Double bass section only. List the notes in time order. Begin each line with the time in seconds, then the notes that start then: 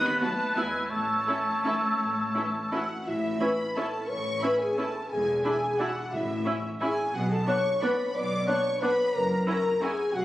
Already playing: D#2
0.56 E2
0.91 A1
2.00 A1
3.07 A1
4.10 A1
5.12 E1
6.13 A1
7.14 B1
8.15 B1
9.14 F#1
10.14 B1